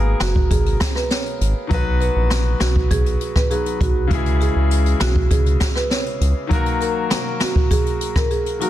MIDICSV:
0, 0, Header, 1, 5, 480
1, 0, Start_track
1, 0, Tempo, 600000
1, 1366, Time_signature, 4, 2, 24, 8
1, 6958, End_track
2, 0, Start_track
2, 0, Title_t, "Marimba"
2, 0, Program_c, 0, 12
2, 164, Note_on_c, 0, 66, 78
2, 330, Note_off_c, 0, 66, 0
2, 405, Note_on_c, 0, 68, 84
2, 488, Note_off_c, 0, 68, 0
2, 764, Note_on_c, 0, 71, 90
2, 848, Note_off_c, 0, 71, 0
2, 885, Note_on_c, 0, 73, 85
2, 1224, Note_off_c, 0, 73, 0
2, 1604, Note_on_c, 0, 71, 76
2, 1688, Note_off_c, 0, 71, 0
2, 2085, Note_on_c, 0, 66, 73
2, 2251, Note_off_c, 0, 66, 0
2, 2327, Note_on_c, 0, 68, 86
2, 2409, Note_off_c, 0, 68, 0
2, 2685, Note_on_c, 0, 71, 72
2, 2768, Note_off_c, 0, 71, 0
2, 2805, Note_on_c, 0, 68, 88
2, 2888, Note_off_c, 0, 68, 0
2, 3044, Note_on_c, 0, 66, 78
2, 3128, Note_off_c, 0, 66, 0
2, 3525, Note_on_c, 0, 68, 83
2, 3608, Note_off_c, 0, 68, 0
2, 4005, Note_on_c, 0, 66, 77
2, 4171, Note_off_c, 0, 66, 0
2, 4245, Note_on_c, 0, 68, 80
2, 4328, Note_off_c, 0, 68, 0
2, 4604, Note_on_c, 0, 71, 91
2, 4688, Note_off_c, 0, 71, 0
2, 4725, Note_on_c, 0, 73, 90
2, 5064, Note_off_c, 0, 73, 0
2, 5446, Note_on_c, 0, 70, 78
2, 5529, Note_off_c, 0, 70, 0
2, 5926, Note_on_c, 0, 66, 76
2, 6091, Note_off_c, 0, 66, 0
2, 6167, Note_on_c, 0, 68, 88
2, 6249, Note_off_c, 0, 68, 0
2, 6526, Note_on_c, 0, 70, 75
2, 6609, Note_off_c, 0, 70, 0
2, 6647, Note_on_c, 0, 68, 85
2, 6729, Note_off_c, 0, 68, 0
2, 6886, Note_on_c, 0, 66, 77
2, 6958, Note_off_c, 0, 66, 0
2, 6958, End_track
3, 0, Start_track
3, 0, Title_t, "Grand piano"
3, 0, Program_c, 1, 0
3, 0, Control_c, 1, 64, 127
3, 0, Note_on_c, 1, 51, 80
3, 0, Note_on_c, 1, 58, 73
3, 0, Note_on_c, 1, 59, 74
3, 0, Note_on_c, 1, 68, 75
3, 0, Note_on_c, 1, 70, 92
3, 1320, Note_off_c, 1, 51, 0
3, 1328, Note_off_c, 1, 58, 0
3, 1335, Note_off_c, 1, 59, 0
3, 1338, Note_on_c, 1, 51, 76
3, 1342, Note_off_c, 1, 68, 0
3, 1349, Note_off_c, 1, 70, 0
3, 1352, Note_on_c, 1, 54, 73
3, 1366, Note_on_c, 1, 59, 74
3, 1376, Control_c, 1, 64, 0
3, 1381, Note_on_c, 1, 66, 72
3, 1395, Note_on_c, 1, 71, 91
3, 1513, Control_c, 1, 64, 127
3, 2763, Note_off_c, 1, 51, 0
3, 2770, Note_off_c, 1, 54, 0
3, 2777, Note_off_c, 1, 59, 0
3, 2785, Note_off_c, 1, 66, 0
3, 2792, Note_off_c, 1, 71, 0
3, 2793, Note_on_c, 1, 51, 53
3, 2800, Note_on_c, 1, 54, 45
3, 2807, Note_on_c, 1, 59, 47
3, 2814, Note_on_c, 1, 66, 47
3, 2822, Note_on_c, 1, 71, 54
3, 3259, Note_on_c, 1, 49, 78
3, 3273, Note_on_c, 1, 52, 70
3, 3280, Note_off_c, 1, 51, 0
3, 3283, Note_off_c, 1, 54, 0
3, 3287, Note_off_c, 1, 59, 0
3, 3287, Note_on_c, 1, 56, 74
3, 3290, Note_off_c, 1, 66, 0
3, 3294, Note_off_c, 1, 71, 0
3, 3296, Control_c, 1, 64, 0
3, 3302, Note_on_c, 1, 64, 73
3, 3315, Note_on_c, 1, 68, 85
3, 3459, Control_c, 1, 64, 127
3, 5160, Note_off_c, 1, 49, 0
3, 5168, Note_off_c, 1, 52, 0
3, 5175, Note_off_c, 1, 56, 0
3, 5178, Note_on_c, 1, 51, 83
3, 5182, Note_off_c, 1, 64, 0
3, 5189, Note_off_c, 1, 68, 0
3, 5193, Note_on_c, 1, 54, 76
3, 5207, Note_on_c, 1, 58, 76
3, 5215, Control_c, 1, 64, 0
3, 5221, Note_on_c, 1, 66, 73
3, 5235, Note_on_c, 1, 70, 89
3, 5375, Control_c, 1, 64, 127
3, 6840, Note_off_c, 1, 51, 0
3, 6847, Note_off_c, 1, 54, 0
3, 6855, Note_off_c, 1, 58, 0
3, 6862, Note_off_c, 1, 66, 0
3, 6869, Note_off_c, 1, 70, 0
3, 6871, Note_on_c, 1, 51, 50
3, 6878, Note_on_c, 1, 54, 47
3, 6886, Note_on_c, 1, 58, 46
3, 6892, Note_on_c, 1, 66, 49
3, 6900, Note_on_c, 1, 70, 57
3, 6958, Note_off_c, 1, 51, 0
3, 6958, Note_off_c, 1, 54, 0
3, 6958, Note_off_c, 1, 58, 0
3, 6958, Note_off_c, 1, 66, 0
3, 6958, Note_off_c, 1, 70, 0
3, 6958, End_track
4, 0, Start_track
4, 0, Title_t, "Analog synth bass"
4, 0, Program_c, 2, 38
4, 0, Note_on_c, 2, 32, 91
4, 117, Note_off_c, 2, 32, 0
4, 166, Note_on_c, 2, 30, 101
4, 374, Note_off_c, 2, 30, 0
4, 406, Note_on_c, 2, 32, 104
4, 613, Note_off_c, 2, 32, 0
4, 1126, Note_on_c, 2, 32, 93
4, 1230, Note_off_c, 2, 32, 0
4, 1366, Note_on_c, 2, 35, 110
4, 1677, Note_off_c, 2, 35, 0
4, 1726, Note_on_c, 2, 34, 86
4, 2037, Note_off_c, 2, 34, 0
4, 2087, Note_on_c, 2, 35, 94
4, 2294, Note_off_c, 2, 35, 0
4, 2325, Note_on_c, 2, 35, 97
4, 2533, Note_off_c, 2, 35, 0
4, 3045, Note_on_c, 2, 35, 91
4, 3253, Note_off_c, 2, 35, 0
4, 3286, Note_on_c, 2, 37, 108
4, 3597, Note_off_c, 2, 37, 0
4, 3647, Note_on_c, 2, 37, 93
4, 3958, Note_off_c, 2, 37, 0
4, 4007, Note_on_c, 2, 35, 87
4, 4214, Note_off_c, 2, 35, 0
4, 4246, Note_on_c, 2, 37, 110
4, 4453, Note_off_c, 2, 37, 0
4, 4966, Note_on_c, 2, 37, 87
4, 5070, Note_off_c, 2, 37, 0
4, 6958, End_track
5, 0, Start_track
5, 0, Title_t, "Drums"
5, 161, Note_on_c, 9, 37, 93
5, 165, Note_on_c, 9, 38, 114
5, 166, Note_on_c, 9, 42, 77
5, 241, Note_off_c, 9, 37, 0
5, 245, Note_off_c, 9, 38, 0
5, 246, Note_off_c, 9, 42, 0
5, 286, Note_on_c, 9, 36, 97
5, 366, Note_off_c, 9, 36, 0
5, 406, Note_on_c, 9, 36, 95
5, 407, Note_on_c, 9, 42, 86
5, 486, Note_off_c, 9, 36, 0
5, 487, Note_off_c, 9, 42, 0
5, 529, Note_on_c, 9, 42, 54
5, 609, Note_off_c, 9, 42, 0
5, 642, Note_on_c, 9, 37, 95
5, 645, Note_on_c, 9, 42, 85
5, 646, Note_on_c, 9, 38, 118
5, 648, Note_on_c, 9, 36, 93
5, 722, Note_off_c, 9, 37, 0
5, 725, Note_off_c, 9, 42, 0
5, 726, Note_off_c, 9, 38, 0
5, 728, Note_off_c, 9, 36, 0
5, 766, Note_on_c, 9, 37, 91
5, 846, Note_off_c, 9, 37, 0
5, 885, Note_on_c, 9, 42, 63
5, 887, Note_on_c, 9, 38, 68
5, 965, Note_off_c, 9, 42, 0
5, 967, Note_off_c, 9, 38, 0
5, 1007, Note_on_c, 9, 42, 54
5, 1087, Note_off_c, 9, 42, 0
5, 1129, Note_on_c, 9, 42, 75
5, 1209, Note_off_c, 9, 42, 0
5, 1366, Note_on_c, 9, 36, 115
5, 1366, Note_on_c, 9, 42, 74
5, 1446, Note_off_c, 9, 36, 0
5, 1446, Note_off_c, 9, 42, 0
5, 1609, Note_on_c, 9, 42, 60
5, 1689, Note_off_c, 9, 42, 0
5, 1843, Note_on_c, 9, 37, 96
5, 1846, Note_on_c, 9, 42, 80
5, 1847, Note_on_c, 9, 38, 125
5, 1923, Note_off_c, 9, 37, 0
5, 1926, Note_off_c, 9, 42, 0
5, 1927, Note_off_c, 9, 38, 0
5, 2081, Note_on_c, 9, 37, 90
5, 2085, Note_on_c, 9, 38, 118
5, 2086, Note_on_c, 9, 42, 79
5, 2161, Note_off_c, 9, 37, 0
5, 2165, Note_off_c, 9, 38, 0
5, 2166, Note_off_c, 9, 42, 0
5, 2205, Note_on_c, 9, 36, 97
5, 2285, Note_off_c, 9, 36, 0
5, 2326, Note_on_c, 9, 36, 93
5, 2326, Note_on_c, 9, 42, 89
5, 2406, Note_off_c, 9, 36, 0
5, 2406, Note_off_c, 9, 42, 0
5, 2448, Note_on_c, 9, 42, 53
5, 2528, Note_off_c, 9, 42, 0
5, 2565, Note_on_c, 9, 42, 83
5, 2645, Note_off_c, 9, 42, 0
5, 2686, Note_on_c, 9, 36, 90
5, 2686, Note_on_c, 9, 37, 88
5, 2766, Note_off_c, 9, 36, 0
5, 2766, Note_off_c, 9, 37, 0
5, 2805, Note_on_c, 9, 42, 66
5, 2885, Note_off_c, 9, 42, 0
5, 2927, Note_on_c, 9, 42, 55
5, 3007, Note_off_c, 9, 42, 0
5, 3046, Note_on_c, 9, 36, 94
5, 3049, Note_on_c, 9, 42, 76
5, 3126, Note_off_c, 9, 36, 0
5, 3129, Note_off_c, 9, 42, 0
5, 3286, Note_on_c, 9, 36, 110
5, 3287, Note_on_c, 9, 42, 74
5, 3366, Note_off_c, 9, 36, 0
5, 3367, Note_off_c, 9, 42, 0
5, 3407, Note_on_c, 9, 42, 55
5, 3487, Note_off_c, 9, 42, 0
5, 3529, Note_on_c, 9, 42, 63
5, 3609, Note_off_c, 9, 42, 0
5, 3767, Note_on_c, 9, 42, 84
5, 3847, Note_off_c, 9, 42, 0
5, 3886, Note_on_c, 9, 42, 57
5, 3966, Note_off_c, 9, 42, 0
5, 4001, Note_on_c, 9, 37, 93
5, 4005, Note_on_c, 9, 38, 113
5, 4006, Note_on_c, 9, 42, 78
5, 4081, Note_off_c, 9, 37, 0
5, 4085, Note_off_c, 9, 38, 0
5, 4086, Note_off_c, 9, 42, 0
5, 4125, Note_on_c, 9, 36, 100
5, 4205, Note_off_c, 9, 36, 0
5, 4246, Note_on_c, 9, 36, 97
5, 4247, Note_on_c, 9, 42, 89
5, 4326, Note_off_c, 9, 36, 0
5, 4327, Note_off_c, 9, 42, 0
5, 4369, Note_on_c, 9, 42, 52
5, 4449, Note_off_c, 9, 42, 0
5, 4482, Note_on_c, 9, 37, 97
5, 4486, Note_on_c, 9, 42, 81
5, 4487, Note_on_c, 9, 38, 118
5, 4488, Note_on_c, 9, 36, 95
5, 4562, Note_off_c, 9, 37, 0
5, 4566, Note_off_c, 9, 42, 0
5, 4567, Note_off_c, 9, 38, 0
5, 4568, Note_off_c, 9, 36, 0
5, 4606, Note_on_c, 9, 37, 90
5, 4686, Note_off_c, 9, 37, 0
5, 4726, Note_on_c, 9, 42, 65
5, 4728, Note_on_c, 9, 38, 65
5, 4806, Note_off_c, 9, 42, 0
5, 4808, Note_off_c, 9, 38, 0
5, 4848, Note_on_c, 9, 42, 53
5, 4928, Note_off_c, 9, 42, 0
5, 4969, Note_on_c, 9, 42, 76
5, 5049, Note_off_c, 9, 42, 0
5, 5206, Note_on_c, 9, 36, 109
5, 5207, Note_on_c, 9, 42, 77
5, 5286, Note_off_c, 9, 36, 0
5, 5287, Note_off_c, 9, 42, 0
5, 5327, Note_on_c, 9, 42, 57
5, 5407, Note_off_c, 9, 42, 0
5, 5449, Note_on_c, 9, 42, 64
5, 5529, Note_off_c, 9, 42, 0
5, 5684, Note_on_c, 9, 37, 100
5, 5687, Note_on_c, 9, 42, 80
5, 5688, Note_on_c, 9, 38, 120
5, 5764, Note_off_c, 9, 37, 0
5, 5767, Note_off_c, 9, 42, 0
5, 5768, Note_off_c, 9, 38, 0
5, 5921, Note_on_c, 9, 37, 95
5, 5925, Note_on_c, 9, 38, 117
5, 5927, Note_on_c, 9, 42, 77
5, 6001, Note_off_c, 9, 37, 0
5, 6005, Note_off_c, 9, 38, 0
5, 6007, Note_off_c, 9, 42, 0
5, 6046, Note_on_c, 9, 36, 98
5, 6126, Note_off_c, 9, 36, 0
5, 6166, Note_on_c, 9, 36, 92
5, 6168, Note_on_c, 9, 42, 90
5, 6246, Note_off_c, 9, 36, 0
5, 6248, Note_off_c, 9, 42, 0
5, 6290, Note_on_c, 9, 42, 54
5, 6370, Note_off_c, 9, 42, 0
5, 6406, Note_on_c, 9, 42, 81
5, 6486, Note_off_c, 9, 42, 0
5, 6526, Note_on_c, 9, 36, 92
5, 6526, Note_on_c, 9, 37, 93
5, 6606, Note_off_c, 9, 36, 0
5, 6606, Note_off_c, 9, 37, 0
5, 6645, Note_on_c, 9, 42, 67
5, 6725, Note_off_c, 9, 42, 0
5, 6768, Note_on_c, 9, 42, 54
5, 6848, Note_off_c, 9, 42, 0
5, 6889, Note_on_c, 9, 42, 75
5, 6958, Note_off_c, 9, 42, 0
5, 6958, End_track
0, 0, End_of_file